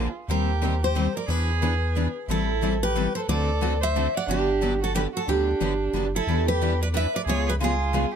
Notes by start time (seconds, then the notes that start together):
Already playing: F4 G#4
0.28 D#2 D#3 G3 C4 G4 A#4 C5
0.64 D#3 G3 C4 G4 C5
0.83 G4 C5
0.95 D#3 G3 C4 G4 C5
1.15 A#4 D5
1.28 E2 E3 B3 D4 G#4 B4
1.62 E3 B3 D4 G#4 B4
1.95 E3 B3 D4 G#4 B4
2.28 A1 E3 G3 C4 E4 A4
2.61 E3 G3 C4 E4 A4
2.83 G4 B4
2.95 E3 G3 C4 E4 A4
3.15 A4 C5
3.28 D2 D3 A3 C4 F#4 A4 D5
3.62 D3 A3 C4 F#4 A4
3.81 C5 E5
3.96 D3 A3 C4 F#4 A4
4.16 D5 F#5
4.27 G1 D3 F#3 B3 D4 G4
4.62 D3 F#3 B3 D4 G4
4.82 F#4 A4
4.94 D3 F#3 B3 D4 G4 B4
5.13 F#4 A4
5.28 D2 D3 F#3 B3 D4 G4
5.61 G1 D3 F#3 B3 D4 G4
5.93 F#1 D3 F#3 B3 D4 G4
6.15 E4 A4
6.27 E2 E3 G3 B3 D4 E4 G4 B4
6.48 G4 B4
6.61 E3 G3 B3 D4 E4 G4 B4
6.82 B4 D5
6.93 E3 G3 B3 D4 E4 G4 B4 E5
7.14 B4 D5
7.25 C#2 C#3 G#3 B3 F4 G#4
7.29 C#5
7.47 G#4 B4
7.60 C#3 G#3 B3 F4 G#4
7.93 C#3 G#3 B3 F4 G#4